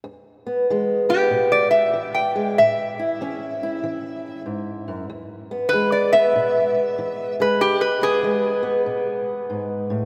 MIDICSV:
0, 0, Header, 1, 3, 480
1, 0, Start_track
1, 0, Key_signature, 4, "major"
1, 0, Tempo, 628272
1, 45, Time_signature, 4, 2, 24, 8
1, 7680, End_track
2, 0, Start_track
2, 0, Title_t, "Resonator guitar played with a steel bar"
2, 0, Program_c, 0, 25
2, 838, Note_on_c, 0, 67, 84
2, 1152, Note_off_c, 0, 67, 0
2, 1160, Note_on_c, 0, 74, 80
2, 1301, Note_off_c, 0, 74, 0
2, 1304, Note_on_c, 0, 76, 72
2, 1624, Note_off_c, 0, 76, 0
2, 1639, Note_on_c, 0, 79, 67
2, 1951, Note_off_c, 0, 79, 0
2, 1973, Note_on_c, 0, 76, 87
2, 3378, Note_off_c, 0, 76, 0
2, 4346, Note_on_c, 0, 71, 88
2, 4510, Note_off_c, 0, 71, 0
2, 4525, Note_on_c, 0, 74, 71
2, 4680, Note_off_c, 0, 74, 0
2, 4680, Note_on_c, 0, 76, 91
2, 5615, Note_off_c, 0, 76, 0
2, 5665, Note_on_c, 0, 71, 80
2, 5811, Note_off_c, 0, 71, 0
2, 5815, Note_on_c, 0, 67, 90
2, 5966, Note_off_c, 0, 67, 0
2, 5967, Note_on_c, 0, 71, 76
2, 6122, Note_off_c, 0, 71, 0
2, 6135, Note_on_c, 0, 68, 83
2, 6597, Note_off_c, 0, 68, 0
2, 7680, End_track
3, 0, Start_track
3, 0, Title_t, "Steel-string acoustic guitar"
3, 0, Program_c, 1, 25
3, 30, Note_on_c, 1, 40, 67
3, 355, Note_on_c, 1, 59, 47
3, 483, Note_off_c, 1, 40, 0
3, 537, Note_on_c, 1, 52, 57
3, 541, Note_on_c, 1, 56, 54
3, 824, Note_off_c, 1, 59, 0
3, 833, Note_on_c, 1, 59, 50
3, 977, Note_off_c, 1, 52, 0
3, 1001, Note_on_c, 1, 47, 66
3, 1449, Note_off_c, 1, 47, 0
3, 1478, Note_on_c, 1, 52, 57
3, 1790, Note_off_c, 1, 56, 0
3, 1800, Note_on_c, 1, 56, 55
3, 1927, Note_off_c, 1, 52, 0
3, 1962, Note_off_c, 1, 59, 0
3, 1966, Note_off_c, 1, 56, 0
3, 1973, Note_on_c, 1, 45, 70
3, 2287, Note_on_c, 1, 64, 52
3, 2415, Note_off_c, 1, 45, 0
3, 2451, Note_on_c, 1, 52, 57
3, 2457, Note_on_c, 1, 61, 55
3, 2771, Note_off_c, 1, 64, 0
3, 2774, Note_on_c, 1, 64, 58
3, 2894, Note_off_c, 1, 52, 0
3, 2930, Note_on_c, 1, 52, 66
3, 3373, Note_off_c, 1, 52, 0
3, 3405, Note_on_c, 1, 44, 54
3, 3716, Note_off_c, 1, 44, 0
3, 3727, Note_on_c, 1, 42, 61
3, 3871, Note_off_c, 1, 61, 0
3, 3890, Note_off_c, 1, 42, 0
3, 3893, Note_on_c, 1, 40, 66
3, 4208, Note_off_c, 1, 64, 0
3, 4211, Note_on_c, 1, 59, 51
3, 4335, Note_off_c, 1, 40, 0
3, 4376, Note_on_c, 1, 52, 58
3, 4380, Note_on_c, 1, 56, 56
3, 4687, Note_off_c, 1, 59, 0
3, 4690, Note_on_c, 1, 59, 57
3, 4817, Note_off_c, 1, 52, 0
3, 4857, Note_on_c, 1, 47, 62
3, 5298, Note_off_c, 1, 47, 0
3, 5337, Note_on_c, 1, 52, 58
3, 5645, Note_off_c, 1, 56, 0
3, 5653, Note_on_c, 1, 56, 60
3, 5778, Note_off_c, 1, 52, 0
3, 5811, Note_on_c, 1, 40, 71
3, 6119, Note_off_c, 1, 59, 0
3, 6122, Note_on_c, 1, 59, 60
3, 6256, Note_off_c, 1, 40, 0
3, 6286, Note_on_c, 1, 52, 52
3, 6288, Note_off_c, 1, 56, 0
3, 6297, Note_on_c, 1, 56, 53
3, 6588, Note_off_c, 1, 59, 0
3, 6591, Note_on_c, 1, 59, 52
3, 6733, Note_off_c, 1, 52, 0
3, 6769, Note_on_c, 1, 47, 57
3, 7215, Note_off_c, 1, 47, 0
3, 7256, Note_on_c, 1, 44, 53
3, 7561, Note_off_c, 1, 44, 0
3, 7564, Note_on_c, 1, 45, 56
3, 7680, Note_off_c, 1, 45, 0
3, 7680, Note_off_c, 1, 56, 0
3, 7680, Note_off_c, 1, 59, 0
3, 7680, End_track
0, 0, End_of_file